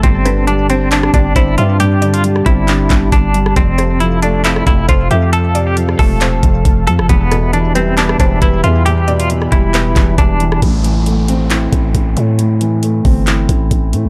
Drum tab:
HH |x-x-x-x-x-x-x-x-|x-xxx-x-x-x-x-x-|x-x-x-x-x-x-x-x-|x-x-x-o-x-x-x-x-|
CP |--------x-------|--------x-x-----|--------x-------|--------x-------|
SD |--r------r------|-----r---------r|--r------r------|-----r---------r|
BD |o---------o-o---|------o---o-o---|o---------o-o---|------o---o-o---|

HH |x-x-x-x-x-x-x-x-|x-xxx-x-x-x-x-x-|x-x-x-x-x-x-x-x-|x-x-x-o-x-x-x-x-|
CP |--------x-------|--------x-x-----|--------x-------|--------x-------|
SD |--r------r------|-----r---------r|----------------|----------------|
BD |o---------o-o---|------o---o-o---|o---------o-o---|------o---o-o---|